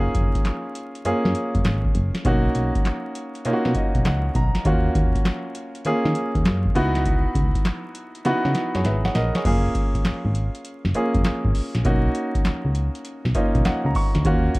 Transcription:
Already playing: grand piano A#3 C#4 F4 G#4
0.15 fm bass F#1, kick, closed hi-hat
0.35 kick, closed hi-hat
0.45 snare, clap, closed hi-hat
0.75 closed hi-hat
0.95 closed hi-hat
1.05 fm bass F#2, grand piano A#3 C#4 F4 G#4, closed hi-hat
1.25 fm bass F#2, snare
1.35 closed hi-hat
1.55 fm bass F#1, kick, closed hi-hat
1.65 fm bass G#1, snare, clap, closed hi-hat
1.85 kick
1.95 fm bass F#1, closed hi-hat
2.15 snare, closed hi-hat
2.25 fm bass B1, grand piano A#3 C#4 D#4 F#4, kick, closed hi-hat
2.55 fm bass B1, closed hi-hat
2.75 kick, closed hi-hat
2.85 snare, clap, closed hi-hat
3.15 closed hi-hat
3.35 closed hi-hat
3.45 fm bass B2, grand piano A#3 C#4 D#4 F4, closed hi-hat
3.53 grand piano F#4
3.65 fm bass B2, snare
3.75 grand piano D#5, kick, closed hi-hat
3.95 fm bass B1, kick, closed hi-hat
4.05 fm bass C#2, grand piano F#5, snare, clap, closed hi-hat
4.35 fm bass B1, grand piano A#5, kick, closed hi-hat
4.55 snare, closed hi-hat
4.65 fm bass D#2, grand piano A#3 C#4 F4 F#4, kick, closed hi-hat
4.95 fm bass D#2, kick, closed hi-hat
5.15 kick, closed hi-hat
5.25 snare, clap, closed hi-hat
5.55 closed hi-hat
5.75 closed hi-hat
5.85 fm bass D#3, grand piano A#3 C#4 F4 G#4, closed hi-hat
6.05 fm bass D#3, snare
6.15 closed hi-hat
6.35 fm bass D#2, kick, closed hi-hat
6.45 fm bass F#2, snare, clap, closed hi-hat
6.65 kick
6.75 fm bass C#2, grand piano B3 D#4 E4 F#4, closed hi-hat
6.95 snare, closed hi-hat
7.05 kick, closed hi-hat
7.35 fm bass C#2, kick, closed hi-hat
7.55 kick, closed hi-hat
7.65 snare, clap, closed hi-hat
7.95 closed hi-hat
8.15 closed hi-hat
8.25 fm bass C#3, grand piano B3 D#4 E4 F#4, snare, closed hi-hat
8.45 fm bass C#3, snare
8.55 snare, closed hi-hat
8.75 fm bass F#2, grand piano G#4 C#5, snare, closed hi-hat
8.85 fm bass G#1, grand piano B4 E5, snare, closed hi-hat
9.05 grand piano C#5 F#5, snare
9.15 fm bass A#1, grand piano A#4 D#5, snare, closed hi-hat
9.35 grand piano G#4 C#5, snare, closed hi-hat
9.45 fm bass F#1, grand piano A#3 C#4 F4 G#4, kick, closed hi-hat, crash
9.75 kick, closed hi-hat
9.95 fm bass G#1, kick, closed hi-hat
10.05 fm bass G#1, snare, clap, closed hi-hat
10.25 fm bass G#1
10.35 closed hi-hat
10.55 closed hi-hat
10.65 closed hi-hat
10.85 fm bass F#1, snare
10.95 grand piano A#3 C#4 F4 G#4, closed hi-hat
11.15 fm bass F#1, kick, closed hi-hat
11.24 fm bass G#1, snare, clap, closed hi-hat
11.45 fm bass G#1, kick
11.55 open hi-hat
11.75 fm bass A#1, snare, closed hi-hat
11.85 fm bass B1, grand piano A#3 C#4 D#4 F#4, kick, closed hi-hat
12.15 closed hi-hat
12.35 fm bass C#2, kick, closed hi-hat
12.45 fm bass C#2, snare, clap, closed hi-hat
12.65 fm bass C#2
12.75 closed hi-hat
12.95 closed hi-hat
13.05 closed hi-hat
13.25 fm bass B1, snare
13.35 grand piano A#3 C#4 D#4 F4 D#5, kick, closed hi-hat
13.55 fm bass B1, kick, closed hi-hat
13.65 fm bass C#2, grand piano F#5, snare, clap, closed hi-hat
13.85 fm bass C#2, grand piano A#5
13.95 grand piano C#6, kick, open hi-hat
14.15 fm bass D2, snare, closed hi-hat
14.25 fm bass D#2, grand piano A#3 C#4 F4 F#4, kick, closed hi-hat
14.55 kick, closed hi-hat

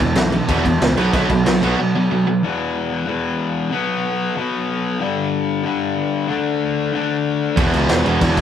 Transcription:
Already playing: overdriven electric guitar E2 B2 E3
0.00 picked electric bass E1, distorted electric guitar E2 B2, kick
0.15 picked electric bass B1, distorted electric guitar E2 B2, snare, crash
0.32 distorted electric guitar E2 B2, overdriven electric guitar E3, crash
0.48 picked electric bass E1, distorted electric guitar E2 B2 E3, kick, crash
0.65 picked electric bass E1, distorted electric guitar E2 B2, kick, crash
0.81 picked electric bass C#2, distorted electric guitar E2 B2, overdriven electric guitar E3, snare, crash
0.97 picked electric bass B1, distorted electric guitar B2 F#3 B3, crash
1.13 picked electric bass B1, distorted electric guitar B2 F#3 B3, kick, crash
1.30 picked electric bass B1, distorted electric guitar B2 F#3, kick, crash
1.46 picked electric bass B1, distorted electric guitar B2 F#3, overdriven electric guitar B3, snare, crash
1.62 picked electric bass B1, distorted electric guitar B2 F#3 B3, crash
1.79 distorted electric guitar B2 F#3
1.94 distorted electric guitar B2 F#3, overdriven electric guitar B3
2.11 distorted electric guitar B2 F#3
2.27 distorted electric guitar B2 F#3
2.43 distorted electric guitar E2 B2 E3
3.06 distorted electric guitar E2 B2 E3
3.71 distorted electric guitar B2 F#3 B3
4.36 distorted electric guitar B2 F#3 B3
5.00 distorted electric guitar G2 D3 G3
5.64 distorted electric guitar G2 D3 G3
6.28 distorted electric guitar D3 A3 D4
6.92 distorted electric guitar D3 A3 D4
7.56 picked electric bass E1, distorted electric guitar E2 B2 E3, kick, crash
7.74 picked electric bass C#2, crash
7.89 picked electric bass E1, snare, crash
8.04 picked electric bass E1, overdriven electric guitar E2 B2 E3, crash
8.09 overdriven electric guitar E2
8.21 picked electric bass E1, distorted electric guitar E2 B2 E3, kick, crash
8.37 picked electric bass E1, kick, crash

